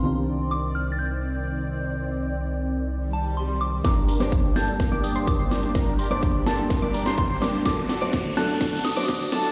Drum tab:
HH |----------------|----------------|xxoxx-oxx-oxx-ox|xxoxx-oxx-oxx-ox|
SD |----------------|----------------|o--o--o-o-----o-|o-----o-o--o--o-|
BD |----------------|----------------|o---o---o---o---|o---o---o---o---|

HH |xxoxx-oxx-oxx-ox|
SD |o-o-o-o-o-o-o-o-|
BD |o---o---o---o---|